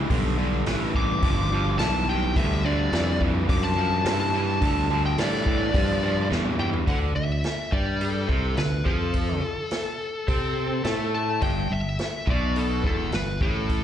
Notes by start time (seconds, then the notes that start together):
0.09 B1 G2 D3, kick, open hi-hat
0.38 G2 D3
0.66 A1 G2 E3, snare, open hi-hat
0.95 G2 E3 D6, kick
1.22 G1 G2 F3, kick, open hi-hat
1.52 G2 F3
1.79 B1 G2 E3 A5, snare, open hi-hat
2.09 G2 E3 G5
2.36 D2 G2 D3 E5, kick, open hi-hat
2.65 G2 D3 D5
2.92 F2 G2 E3, snare, open hi-hat
3.20 G2 E3, kick
3.48 F#2 G2 F3 D6, kick, open hi-hat
3.63 A5
3.76 G2 F3
4.05 G2 E3, snare, open hi-hat
4.20 A5
4.34 G2 E3
4.62 D2 G2 D3, kick, open hi-hat
4.90 G2 D3
5.06 G5
5.18 G2 A2 E3 D5, snare, open hi-hat
5.46 G2 E3, kick
5.74 G2 F3, kick, open hi-hat
6.02 G2 F3
6.30 E2 G2 E3, snare
6.45 mid tom
6.59 G2 E3 G5, mid tom
6.73 floor tom
6.87 D2 D3 F#5, kick, open hi-hat
7.15 D2 D3 E5
7.44 snare, open hi-hat
7.72 G2 G3 D5, kick
8.01 A4, open hi-hat
8.28 C2 C3, kick
8.57 D2 D3 B4, snare, open hi-hat
8.85 F2 F3 A4, kick
9.14 kick, open hi-hat
9.71 snare, open hi-hat
10.28 C3 C4, kick, open hi-hat
10.84 A2 A3, snare, open hi-hat
11.14 A5
11.41 G1 G2 G5, kick, open hi-hat
11.70 G1 G2 E5
11.99 snare, open hi-hat
12.27 B1 B2 D5, kick
12.56 A4, open hi-hat
12.84 E1 E2 A4, kick
13.12 G1 G2 B4, snare, open hi-hat
13.41 A1 A2 A4, kick
13.69 kick, open hi-hat